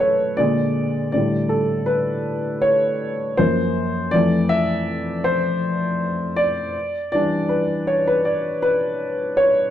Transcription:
upright piano
Already playing: F#2 E3 A3 A4 B4
0.00 C#5
0.37 A#2 D3 G#3 D5
1.12 A2 D3 G3 D5
1.49 A4
1.86 B4
2.62 C#5
3.37 F#2 F3 A#3 C5
4.11 F2 E3 A3 D5
4.49 E5
5.24 C5
6.36 D5
7.12 E3 G3 D4 D5
7.49 B4
7.87 C#5
8.07 B4
8.25 D5
8.62 B4
9.37 C#5

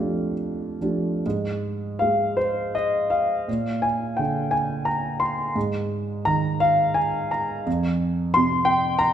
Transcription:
grand piano
Already playing: F2 F3 A3 D4 G4 F5
0.81 F3 A3 D4 G4
1.26 G#2
1.99 G#3 F5
2.37 C5
2.75 D#5
3.10 F5
3.48 A#2
3.82 G#5
4.17 D3 G5
4.51 G#5
4.85 A#5
5.20 C6
5.56 G#2
6.25 D#3 A#5
6.60 F5
6.94 G#5
7.31 A#5
7.66 F2
8.34 C3 C6
8.65 G5
8.99 A#5

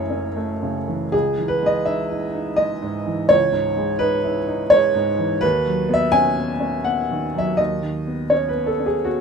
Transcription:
upright piano
Already playing: F#1 F#2 C#3 A3 C#4 E4 C#5 D#5
0.10 C#4
0.36 A3
0.63 C#3
0.88 E3
1.12 C#2 G#4
1.38 E3
1.48 B4
1.62 G#3 D#5
1.85 D#4 E5
2.11 E4
2.33 D#4
2.56 G#3 D#5
2.82 G#2
3.06 E3
3.29 C#2 C#5
3.52 G#2
3.77 G#3
3.99 D#4 B4
4.24 E4
4.48 D#4
4.70 G#3 C#5
4.95 G#2
5.19 E3
5.41 D#2 B4
5.66 F#3
5.89 B3
5.94 E5
6.12 C#4 G#5
6.36 B3
6.60 C#4
6.84 B3 F#5
7.11 D#3
7.34 F#3 E5
7.57 D#2 D#5
7.83 D#3
8.07 B3
8.30 C#4 C#5
8.49 B4
8.54 B3
8.66 A4
8.80 C#4
8.86 G#4
9.04 B3 F#4

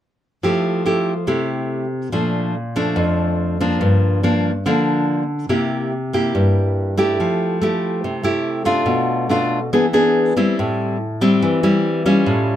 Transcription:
nylon-string guitar
0.43 F3 A3 E4 G4
0.86 A3 E4 G4
1.27 C3 A3 E4 G4
2.12 A#2 F3 A3 D4
2.76 F3 A3 D4
2.96 F2
3.61 F3 A#3 D4
3.81 G2
4.23 F3 A#3 D4
4.66 D3 F3 A#3 D4
5.49 C3 A#3 E4 G4
6.13 A#3 E4 G4
6.35 G2
6.97 A3 E4 G4
7.20 F3
7.62 A3 E4 G4
8.04 C3
8.23 A3 E4 G4
8.65 A3 D4 F4
8.86 B2
9.29 A3 D4 F4
9.73 E3 B3 D4 G#4
9.93 B3 D4 G#4
10.37 G3 C4 E4
10.59 A2
11.21 G3 C4 E4
11.42 E3
11.63 G3 C4 E4
12.06 G3 C#4 F4
12.26 A2

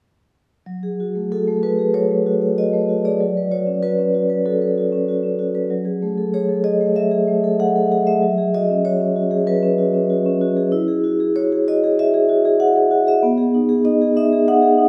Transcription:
vibraphone
0.66 F#3
0.83 G#4
1.00 F#4
1.15 A3
1.32 F#4 A4
1.47 A3
1.63 F#4 B4
1.79 G#4
1.94 F#3 C#5
2.11 A3
2.26 F#4
2.41 A3
2.58 F#4 D#5
2.73 A3
2.89 F#4
3.05 G#4 D5
3.20 F#3
3.37 B4
3.51 F#4 C#5
3.67 C#4
3.83 F#4 B4
3.99 C#4
4.15 F#4
4.30 B4
4.46 F#4 A4
4.62 B4
4.78 F#4
4.92 C#4
5.08 F#4
5.23 C#4
5.39 F#4
5.55 B4
5.70 F#3
5.85 G#4
6.02 A3
6.18 A4
6.34 G#4 C#5
6.49 A4
6.64 G#4 D#5
6.81 A3
6.96 F#3 E5
7.11 G#4
7.27 A3
7.44 A4
7.60 G#4 F#5
7.76 A4
7.92 G#4
8.07 A3 E5
8.22 F#3
8.38 G#4
8.54 F#4 D#5
8.70 C#4
8.85 F#4 C#5
9.00 C#4
9.16 F#4
9.31 G#4
9.47 F#3 B4
9.62 C#4
9.78 F#4
9.94 C#4
10.10 F#4
10.26 C#4
10.41 F#4
10.57 G#4
10.72 E4
10.88 G#4
11.04 F#4
11.20 G#4
11.36 F#4 C#5
11.52 G#4
11.68 F#4 D#5
11.84 G#4
11.99 F#4 E5
12.14 G#4
12.29 F#4
12.45 G#4
12.60 F#4 F#5
12.76 G#4
12.91 F#4
13.07 G#4 E5
13.23 B3
13.38 G#4
13.54 D#4
13.69 G#4
13.85 D#4 D#5
14.01 G#4
14.17 D#4 E5
14.33 G#4
14.48 D#4 F#5
14.62 G#4
14.78 D#4

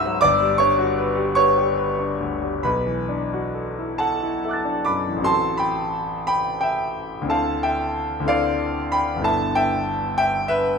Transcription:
grand piano
Already playing: C#2 G#2 F#3 D#4 F#4 B4 E5 F#5 B5 E6 F#6
0.06 F#3
0.21 G1 D5 D6
0.41 G3
0.58 D4 C#5 C#6
0.78 F#4
0.98 B4
1.17 G4
1.35 B4 C#5 C#6
1.57 G4
1.77 B4
1.98 D4
2.20 D2
2.42 G3
2.63 B1 B4 B5
2.86 E3
3.09 D4
3.33 F#4
3.54 A4
3.79 E4
3.98 A4 F#5 A5
4.23 E4
4.45 A4 E5 D6
4.51 F#6 A6
4.65 D4
4.85 F#2 B5 D6
5.08 E3
5.16 A1 E3
5.21 C4 F#4 A4 C6
5.26 A5
5.57 G5 B5
6.27 G5 B5
6.61 E5 G5
7.21 D2 D3
7.26 C4 E4 A4 A5
7.31 F5
7.63 E5 G5
8.20 D2 D3 C4
8.26 E4 A4 D5 F5
8.92 G5 B5
9.16 G1 D3
9.20 B3 E4 A4
9.24 E5 A5
9.55 E5 G5
10.18 E5 G5
10.48 B4 E5

